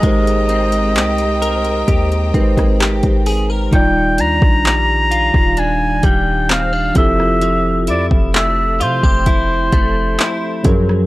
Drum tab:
HH |xxxxxxxxxxxxxxo-|x-x-x-x-x-x-x-x-|x-x-x-x-x-x-x-x-|
CP |----x-------x---|----x-------x---|----x-------x---|
SD |-----------r----|---------------r|---------------r|
BD |o-------o-oo-o--|o--o---o--o---o-|---o---oo-o---o-|